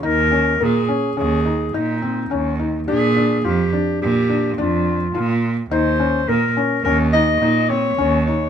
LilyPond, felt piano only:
\new Staff \with { instrumentName = "Felt piano" } { \time 5/4 \key ees \mixolydian \tempo 4 = 106 ees'8 des'8 bes8 des'8 des'8 ees'8 ees'8 c'8 des'8 ees'8 | d'8 d'8 f'8 d'4 d'8 d'4 f'4 | ees'8 des'8 bes8 des'8 des'8 ees'8 ees'8 c'8 des'8 ees'8 | }